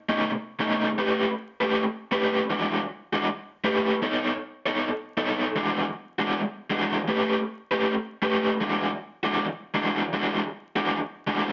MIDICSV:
0, 0, Header, 1, 2, 480
1, 0, Start_track
1, 0, Tempo, 381194
1, 1235, Time_signature, 4, 2, 24, 8
1, 14510, End_track
2, 0, Start_track
2, 0, Title_t, "Overdriven electric guitar"
2, 0, Program_c, 0, 29
2, 112, Note_on_c, 0, 63, 87
2, 117, Note_on_c, 0, 61, 89
2, 120, Note_on_c, 0, 57, 68
2, 128, Note_on_c, 0, 47, 73
2, 370, Note_off_c, 0, 63, 0
2, 372, Note_off_c, 0, 61, 0
2, 374, Note_off_c, 0, 57, 0
2, 378, Note_off_c, 0, 47, 0
2, 745, Note_on_c, 0, 47, 85
2, 755, Note_on_c, 0, 57, 92
2, 755, Note_on_c, 0, 61, 98
2, 764, Note_on_c, 0, 63, 90
2, 1116, Note_off_c, 0, 47, 0
2, 1121, Note_off_c, 0, 57, 0
2, 1121, Note_off_c, 0, 61, 0
2, 1125, Note_off_c, 0, 63, 0
2, 1237, Note_on_c, 0, 57, 85
2, 1240, Note_on_c, 0, 61, 76
2, 1245, Note_on_c, 0, 67, 89
2, 1249, Note_on_c, 0, 71, 86
2, 1602, Note_off_c, 0, 57, 0
2, 1604, Note_off_c, 0, 61, 0
2, 1606, Note_off_c, 0, 67, 0
2, 1608, Note_off_c, 0, 71, 0
2, 2020, Note_on_c, 0, 71, 85
2, 2024, Note_on_c, 0, 67, 90
2, 2031, Note_on_c, 0, 61, 76
2, 2035, Note_on_c, 0, 57, 77
2, 2284, Note_off_c, 0, 71, 0
2, 2287, Note_off_c, 0, 67, 0
2, 2290, Note_off_c, 0, 61, 0
2, 2292, Note_off_c, 0, 57, 0
2, 2662, Note_on_c, 0, 57, 86
2, 2664, Note_on_c, 0, 61, 94
2, 2673, Note_on_c, 0, 67, 98
2, 2676, Note_on_c, 0, 71, 101
2, 3035, Note_off_c, 0, 57, 0
2, 3036, Note_off_c, 0, 61, 0
2, 3040, Note_off_c, 0, 67, 0
2, 3042, Note_off_c, 0, 71, 0
2, 3146, Note_on_c, 0, 52, 89
2, 3150, Note_on_c, 0, 56, 87
2, 3153, Note_on_c, 0, 62, 90
2, 3158, Note_on_c, 0, 66, 92
2, 3517, Note_off_c, 0, 52, 0
2, 3519, Note_off_c, 0, 56, 0
2, 3521, Note_off_c, 0, 62, 0
2, 3523, Note_off_c, 0, 66, 0
2, 3938, Note_on_c, 0, 66, 89
2, 3943, Note_on_c, 0, 62, 80
2, 3946, Note_on_c, 0, 56, 86
2, 3951, Note_on_c, 0, 52, 73
2, 4108, Note_off_c, 0, 66, 0
2, 4111, Note_off_c, 0, 62, 0
2, 4113, Note_off_c, 0, 56, 0
2, 4115, Note_off_c, 0, 52, 0
2, 4584, Note_on_c, 0, 57, 92
2, 4588, Note_on_c, 0, 61, 90
2, 4594, Note_on_c, 0, 67, 105
2, 4597, Note_on_c, 0, 71, 97
2, 4956, Note_off_c, 0, 57, 0
2, 4958, Note_off_c, 0, 61, 0
2, 4961, Note_off_c, 0, 67, 0
2, 4962, Note_off_c, 0, 71, 0
2, 5064, Note_on_c, 0, 59, 95
2, 5072, Note_on_c, 0, 63, 96
2, 5076, Note_on_c, 0, 69, 88
2, 5084, Note_on_c, 0, 73, 97
2, 5436, Note_off_c, 0, 59, 0
2, 5440, Note_off_c, 0, 63, 0
2, 5442, Note_off_c, 0, 69, 0
2, 5446, Note_off_c, 0, 73, 0
2, 5868, Note_on_c, 0, 73, 94
2, 5873, Note_on_c, 0, 69, 91
2, 5875, Note_on_c, 0, 63, 81
2, 5880, Note_on_c, 0, 59, 74
2, 6128, Note_off_c, 0, 73, 0
2, 6131, Note_off_c, 0, 69, 0
2, 6132, Note_off_c, 0, 63, 0
2, 6135, Note_off_c, 0, 59, 0
2, 6512, Note_on_c, 0, 59, 85
2, 6516, Note_on_c, 0, 63, 84
2, 6522, Note_on_c, 0, 69, 104
2, 6524, Note_on_c, 0, 73, 92
2, 6880, Note_off_c, 0, 59, 0
2, 6882, Note_off_c, 0, 63, 0
2, 6884, Note_off_c, 0, 69, 0
2, 6886, Note_off_c, 0, 73, 0
2, 6995, Note_on_c, 0, 52, 85
2, 7001, Note_on_c, 0, 56, 81
2, 7006, Note_on_c, 0, 62, 87
2, 7013, Note_on_c, 0, 66, 83
2, 7361, Note_off_c, 0, 52, 0
2, 7364, Note_off_c, 0, 56, 0
2, 7367, Note_off_c, 0, 62, 0
2, 7370, Note_off_c, 0, 66, 0
2, 7789, Note_on_c, 0, 66, 83
2, 7798, Note_on_c, 0, 62, 79
2, 7802, Note_on_c, 0, 56, 80
2, 7807, Note_on_c, 0, 52, 66
2, 8049, Note_off_c, 0, 66, 0
2, 8053, Note_off_c, 0, 62, 0
2, 8056, Note_off_c, 0, 56, 0
2, 8058, Note_off_c, 0, 52, 0
2, 8435, Note_on_c, 0, 52, 89
2, 8438, Note_on_c, 0, 56, 97
2, 8440, Note_on_c, 0, 62, 101
2, 8450, Note_on_c, 0, 66, 93
2, 8801, Note_off_c, 0, 52, 0
2, 8803, Note_off_c, 0, 56, 0
2, 8804, Note_off_c, 0, 62, 0
2, 8809, Note_off_c, 0, 66, 0
2, 8910, Note_on_c, 0, 57, 77
2, 8916, Note_on_c, 0, 61, 83
2, 8923, Note_on_c, 0, 67, 79
2, 8927, Note_on_c, 0, 71, 89
2, 9279, Note_off_c, 0, 57, 0
2, 9282, Note_off_c, 0, 61, 0
2, 9285, Note_off_c, 0, 67, 0
2, 9287, Note_off_c, 0, 71, 0
2, 9713, Note_on_c, 0, 71, 83
2, 9721, Note_on_c, 0, 67, 84
2, 9725, Note_on_c, 0, 61, 77
2, 9733, Note_on_c, 0, 57, 70
2, 9971, Note_off_c, 0, 71, 0
2, 9975, Note_off_c, 0, 67, 0
2, 9977, Note_off_c, 0, 61, 0
2, 9981, Note_off_c, 0, 57, 0
2, 10352, Note_on_c, 0, 57, 88
2, 10357, Note_on_c, 0, 61, 87
2, 10362, Note_on_c, 0, 67, 97
2, 10369, Note_on_c, 0, 71, 98
2, 10720, Note_off_c, 0, 57, 0
2, 10722, Note_off_c, 0, 61, 0
2, 10725, Note_off_c, 0, 67, 0
2, 10728, Note_off_c, 0, 71, 0
2, 10835, Note_on_c, 0, 52, 88
2, 10838, Note_on_c, 0, 56, 84
2, 10844, Note_on_c, 0, 62, 95
2, 10848, Note_on_c, 0, 66, 94
2, 11201, Note_off_c, 0, 52, 0
2, 11202, Note_off_c, 0, 56, 0
2, 11205, Note_off_c, 0, 62, 0
2, 11207, Note_off_c, 0, 66, 0
2, 11627, Note_on_c, 0, 66, 91
2, 11636, Note_on_c, 0, 62, 87
2, 11639, Note_on_c, 0, 56, 81
2, 11640, Note_on_c, 0, 52, 73
2, 11887, Note_off_c, 0, 66, 0
2, 11892, Note_off_c, 0, 62, 0
2, 11893, Note_off_c, 0, 56, 0
2, 11894, Note_off_c, 0, 52, 0
2, 12266, Note_on_c, 0, 52, 89
2, 12272, Note_on_c, 0, 56, 86
2, 12277, Note_on_c, 0, 62, 98
2, 12284, Note_on_c, 0, 66, 94
2, 12636, Note_off_c, 0, 52, 0
2, 12639, Note_off_c, 0, 56, 0
2, 12642, Note_off_c, 0, 62, 0
2, 12645, Note_off_c, 0, 66, 0
2, 12753, Note_on_c, 0, 52, 75
2, 12756, Note_on_c, 0, 56, 78
2, 12756, Note_on_c, 0, 62, 86
2, 12767, Note_on_c, 0, 66, 95
2, 13119, Note_off_c, 0, 52, 0
2, 13121, Note_off_c, 0, 56, 0
2, 13121, Note_off_c, 0, 62, 0
2, 13126, Note_off_c, 0, 66, 0
2, 13544, Note_on_c, 0, 66, 85
2, 13550, Note_on_c, 0, 62, 81
2, 13554, Note_on_c, 0, 56, 75
2, 13557, Note_on_c, 0, 52, 67
2, 13806, Note_off_c, 0, 66, 0
2, 13809, Note_off_c, 0, 62, 0
2, 13810, Note_off_c, 0, 56, 0
2, 13812, Note_off_c, 0, 52, 0
2, 14190, Note_on_c, 0, 52, 79
2, 14195, Note_on_c, 0, 56, 91
2, 14200, Note_on_c, 0, 62, 92
2, 14204, Note_on_c, 0, 66, 98
2, 14510, Note_off_c, 0, 52, 0
2, 14510, Note_off_c, 0, 56, 0
2, 14510, Note_off_c, 0, 62, 0
2, 14510, Note_off_c, 0, 66, 0
2, 14510, End_track
0, 0, End_of_file